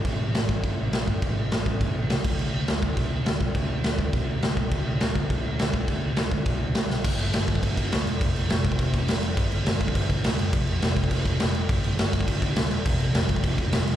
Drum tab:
CC |x---x---x---x---|x---x---x---x-x-|x---x---x---x---|x---x---x---x---|
SD |----o-------o---|----o-------o---|----o-------o---|----o-------o---|
BD |o-----o-o-----o-|o-----o-o-----o-|------o-o-----o-|o-----o-o-----o-|

CC |x---x---x---x---|x---x---x---x---|x-x-x-x-x-x-x-x-|x-x-x-x-x-x-x-x-|
SD |----o-------o---|----o-------o-o-|----o-------o---|----o-------o---|
BD |o-----o-o-----o-|o-----o-o-------|o-----ooo-o-----|o-----ooo-o-----|

CC |x-x-x-x-x-x-x-x-|x-x-x-x-x-x-x-x-|x-x-x-x-x-x-x-x-|x-x-x-x-x-x-x-x-|
SD |----o-------o---|----o-------o---|----o-------o---|----o-------o---|
BD |o-----ooo-o-----|o-----ooo-o-----|o-----ooo-o-----|o-----ooo-o-----|